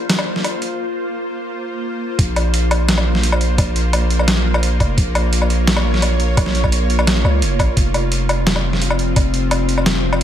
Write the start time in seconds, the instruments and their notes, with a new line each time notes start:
Already playing: 808-style bass A#1, synth drone A#3 F4 C5
0.10 snare, closed hi-hat
0.19 low woodblock
0.36 snare
0.44 closed hi-hat, low woodblock
0.62 closed hi-hat
2.19 808-style bass A#1, synth drone A#3 F4 C5, kick, closed hi-hat
2.36 closed hi-hat, low woodblock
2.54 closed hi-hat
2.71 closed hi-hat, low woodblock
2.89 snare, closed hi-hat
2.98 low woodblock
3.15 snare
3.23 closed hi-hat
3.32 low woodblock
3.41 closed hi-hat
3.58 808-style bass A#1, kick, closed hi-hat, low woodblock
3.76 closed hi-hat
3.93 closed hi-hat, low woodblock
4.10 closed hi-hat
4.19 low woodblock
4.28 snare, closed hi-hat
4.54 low woodblock
4.63 closed hi-hat
4.80 808-style bass F1, kick, closed hi-hat, low woodblock
4.98 808-style bass A#1, synth drone C#5, kick, closed hi-hat
5.15 closed hi-hat, low woodblock
5.33 closed hi-hat
5.42 low woodblock
5.50 closed hi-hat
5.67 snare, closed hi-hat
5.77 low woodblock
5.94 snare
6.02 closed hi-hat, low woodblock
6.20 closed hi-hat
6.37 808-style bass A#1, kick, closed hi-hat, low woodblock
6.46 snare
6.55 closed hi-hat
6.64 kick, low woodblock
6.72 closed hi-hat
6.90 closed hi-hat
6.99 low woodblock
7.07 snare, closed hi-hat
7.24 808-style bass C#2, low woodblock
7.42 808-style bass F1, closed hi-hat
7.59 808-style bass A#1, kick, closed hi-hat, low woodblock
7.76 808-style bass F1, synth drone F3 C4, kick, closed hi-hat
7.94 closed hi-hat, low woodblock
8.12 closed hi-hat
8.29 closed hi-hat, low woodblock
8.47 snare, closed hi-hat
8.56 low woodblock
8.73 snare
8.82 closed hi-hat
8.90 low woodblock
8.99 closed hi-hat
9.16 808-style bass F1, kick, closed hi-hat, low woodblock
9.34 closed hi-hat
9.51 closed hi-hat, low woodblock
9.69 closed hi-hat
9.78 low woodblock
9.86 snare, closed hi-hat
10.13 low woodblock